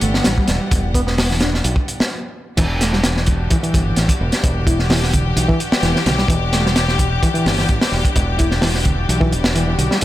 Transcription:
Already playing: string section E3 D4 G4 F#5
0.01 fingered electric bass G1, reed electric piano A3, closed hi-hat
0.14 reed electric piano B3, snare
0.24 fingered electric bass A1, reed electric piano G3, snare, closed hi-hat
0.38 reed electric piano G3, kick
0.48 fingered electric bass E1, snare, closed hi-hat
0.71 fingered electric bass E1, kick, closed hi-hat
0.94 reed electric piano B3, kick, closed hi-hat
1.07 reed electric piano B3, snare
1.18 snare, open hi-hat
1.31 reed electric piano E3, snare
1.40 reed electric piano D4, snare, closed hi-hat
1.54 snare
1.64 fingered electric bass B1, closed hi-hat
1.76 kick
1.88 closed hi-hat
2.00 muted fingered electric bass stroke, snare
2.57 fingered electric bass E1, reed electric piano E3, string section E3 D4 F#4 G4, kick, closed hi-hat, crash
2.81 reed electric piano A3, snare, closed hi-hat
2.93 reed electric piano G3, snare
3.04 snare, closed hi-hat
3.17 snare
3.26 kick, closed hi-hat
3.50 reed electric piano E3, kick, closed hi-hat
3.63 reed electric piano E3, closed hi-hat
3.74 fingered electric bass G1, kick, closed hi-hat
3.96 fingered electric bass A1, snare, closed hi-hat
4.09 kick, closed hi-hat
4.21 fingered electric bass E1
4.32 snare, closed hi-hat
4.43 fingered electric bass E1, kick, closed hi-hat
4.67 reed electric piano E4, kick, closed hi-hat
4.79 snare
4.90 reed electric piano E3, snare, open hi-hat
5.03 snare
5.13 reed electric piano D3, kick, closed hi-hat
5.36 fingered electric bass B1, reed electric piano E3, closed hi-hat
5.48 reed electric piano E3, kick
5.60 closed hi-hat
5.72 muted fingered electric bass stroke, snare
5.83 fingered electric bass E1, reed electric piano E3, snare, closed hi-hat
5.95 reed electric piano E3, snare
6.06 fingered electric bass B1, reed electric piano D3, snare, closed hi-hat
6.18 reed electric piano G3, snare
6.28 fingered electric bass E1, reed electric piano E3, kick, closed hi-hat
6.53 reed electric piano A3, snare, closed hi-hat
6.65 reed electric piano G3, snare
6.76 snare, closed hi-hat
6.88 snare
6.99 kick, closed hi-hat
7.23 reed electric piano E3, kick, closed hi-hat
7.34 reed electric piano E3, closed hi-hat
7.46 fingered electric bass G1, snare, open hi-hat
7.58 snare
7.69 fingered electric bass A1, kick, closed hi-hat
7.81 snare, open hi-hat
7.92 fingered electric bass E1, snare
8.05 kick, closed hi-hat
8.16 fingered electric bass E1, kick, closed hi-hat
8.39 reed electric piano E4, kick, closed hi-hat
8.51 snare
8.62 reed electric piano E3, snare, open hi-hat
8.74 snare
8.85 reed electric piano D3, kick, closed hi-hat
9.09 fingered electric bass B1, reed electric piano E3, closed hi-hat
9.21 reed electric piano E3, kick
9.32 fingered electric bass E1, closed hi-hat
9.44 snare
9.55 reed electric piano E3, closed hi-hat
9.67 reed electric piano E3
9.78 fingered electric bass B1, reed electric piano D3, closed hi-hat
9.91 reed electric piano G3, snare
10.01 closed hi-hat

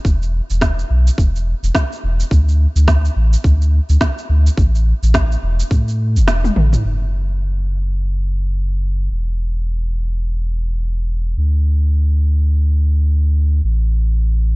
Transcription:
0.05 sub bass E1, kick, cabasa
0.22 cabasa
0.50 sub bass E1, cabasa
0.61 kick, snare, cabasa
0.79 cabasa
0.90 sub bass B1
1.07 cabasa
1.18 sub bass E1, kick, cabasa
1.36 cabasa
1.63 sub bass E1, cabasa
1.75 kick, snare, cabasa
1.92 cabasa
2.04 sub bass E1
2.20 cabasa
2.31 sub bass D2, kick, cabasa
2.49 cabasa
2.76 sub bass D2, cabasa
2.88 kick, snare, cabasa
3.05 cabasa
3.16 sub bass A1
3.33 cabasa
3.44 sub bass D2, kick, cabasa
3.62 cabasa
3.89 sub bass D2, cabasa
4.01 kick, snare, cabasa
4.18 cabasa
4.29 sub bass D2
4.47 cabasa
4.57 sub bass A1, kick, cabasa
4.75 cabasa
5.03 sub bass A1, cabasa
5.14 kick, snare, cabasa
5.32 cabasa
5.43 sub bass E1
5.60 cabasa
5.71 sub bass A2, kick, cabasa
5.88 cabasa
6.16 sub bass E1, cabasa
6.28 snare, cabasa
6.44 high tom, cabasa
6.56 sub bass A1, mid tom
6.73 mid tom, cabasa
6.85 sub bass F#1
9.11 sub bass E1
11.37 sub bass D2
13.64 sub bass A1

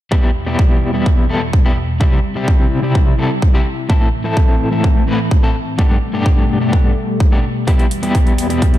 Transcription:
0.11 analog synth pad E2 B2 G3, clean electric guitar G3 B3 E4 G4, kick
0.47 clean electric guitar G3 B3 E4 G4
0.59 kick
0.94 clean electric guitar G3 B3 E4 G4
1.06 kick
1.29 clean electric guitar G3 B3 E4 A4
1.53 kick
1.65 clean electric guitar G3 B3 E4 G4
2.00 clean electric guitar C3 G3 C4 E4 G4, analog synth pad C3 G3 E4, kick
2.35 clean electric guitar C3 G3 C4 E4 G4
2.48 kick
2.83 clean electric guitar C3 G3 C4 E4 G4
2.95 kick
3.18 clean electric guitar C3 G3 C4 E4 A4
3.42 kick
3.53 clean electric guitar C3 G3 C4 E4 G4
3.89 clean electric guitar A2 A3 C4 E4 A4, analog synth pad A2 E3 C4, kick
4.24 clean electric guitar A2 A3 C4 E4 A4
4.37 kick
4.72 clean electric guitar A2 A3 C4 E4 A4
4.84 kick
5.07 clean electric guitar A2 A3 C4 E4 B4
5.31 kick
5.42 clean electric guitar A2 A3 C4 E4 A4
5.78 clean electric guitar G2 A3 B3 D4 G4, analog synth pad B2 G3 A3, kick
6.13 clean electric guitar G2 A3 B3 D4 G4
6.26 kick
6.61 clean electric guitar A3 B3 D4 G4
6.73 kick
7.20 kick
7.31 clean electric guitar G2 A3 B3 D4 G4
7.67 analog synth pad E2 B2, clean electric guitar G3 B3 E4 G4, kick, closed hi-hat
7.79 closed hi-hat
7.91 closed hi-hat
8.03 clean electric guitar G3 B3 E4 G4, closed hi-hat
8.15 kick, closed hi-hat
8.27 closed hi-hat
8.38 closed hi-hat
8.50 clean electric guitar G3 B3 E4 G4, closed hi-hat
8.62 kick, closed hi-hat
8.74 closed hi-hat

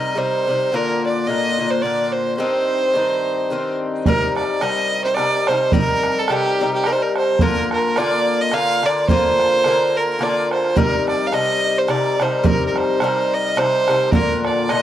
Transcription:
Already playing: bouzouki C3 G3 D#4 A#4, fiddle D#5
0.15 bouzouki C3 G3 D#4 A#4, fiddle C5
0.47 bouzouki C3 G3 D#4 A#4
0.72 bouzouki A#2 D3 A#3 F4, fiddle A#4
1.06 fiddle D5
1.27 bouzouki A#2 D3 A#3 F4, fiddle D#5
1.58 bouzouki A#2 D3 A#3 F4
1.70 fiddle C5
1.82 bouzouki A#2 D3 A#3 F4, fiddle D5
2.04 fiddle D5
2.12 fiddle C5
2.37 bouzouki G2 D#3 C4 D#4, fiddle C5
2.94 bouzouki G2 D#3 C4 D#4
3.50 bouzouki G2 D#3 C4 D#4
4.06 bouzouki C3 G3 D#4 A#4, fiddle A#4, bodhran
4.36 fiddle D5, bodhran
4.61 bouzouki C3 G3 D#4 A#4, fiddle D#5, bodhran
5.05 fiddle C5
5.15 bouzouki C3 G3, fiddle D5, bodhran
5.19 bouzouki D#4 A#4
5.47 bouzouki C3 G3 D#4 A#4, fiddle C5, bodhran
5.72 bouzouki C3 G3 D#4 A#4, fiddle A#4, bodhran
6.03 bodhran
6.19 fiddle A4
6.28 bouzouki C3 G3 D#4, fiddle G4, bodhran
6.32 bouzouki A#4
6.61 bouzouki C3 G3 D#4 A#4
6.74 fiddle G4
6.84 bouzouki C3 G3, fiddle A#4, bodhran
6.88 bouzouki D#4 A#4
6.92 fiddle C5
7.02 fiddle A#4
7.16 fiddle C5, bodhran
7.39 bouzouki D3 A#3 F4 A#4, fiddle A#4, bodhran
7.71 fiddle A#4, bodhran
7.96 bouzouki D3 A#3 F4 A#4, fiddle D5, bodhran
8.41 fiddle D#5
8.52 bouzouki D3 A#3 F4 A#4, fiddle F5, bodhran
8.83 bouzouki D3 A#3 F4 A#4, fiddle D5, bodhran
9.09 bouzouki D3 A#3 F4 A#4, fiddle C5, bodhran
9.40 bodhran
9.64 bouzouki D3 A#3 F4 A#4, bodhran
9.97 fiddle A#4
10.19 bouzouki D3 A#3 F4 A#4, fiddle D5, bodhran
10.51 fiddle C5, bodhran
10.64 bodhran
10.76 bouzouki C3 G3 D#4 A#4, fiddle A#4, bodhran
11.08 fiddle D5, bodhran
11.27 fiddle F5
11.32 bouzouki C3 G3 D#4 A#4, fiddle D#5, bodhran
11.78 fiddle C5
11.88 bouzouki C3 G3 D#4 A#4, fiddle D5, bodhran
12.19 bouzouki C3 G3 D#4 A#4, fiddle C5, bodhran
12.44 bouzouki C3 G3 D#4 A#4, fiddle A#4, bodhran
12.67 fiddle A#4
12.76 fiddle C5, bodhran
13.00 bouzouki C3 G3 D#4 A#4, bodhran
13.34 fiddle D#5
13.56 bouzouki C3 G3 D#4 A#4, fiddle C5, bodhran
13.88 bouzouki C3 G3 D#4 A#4, bodhran
14.12 bouzouki A#2 D3 A#3 F4, fiddle A#4, bodhran
14.45 fiddle D5, bodhran
14.69 bouzouki A#2 D3 A#3 F4, fiddle D#5, bodhran

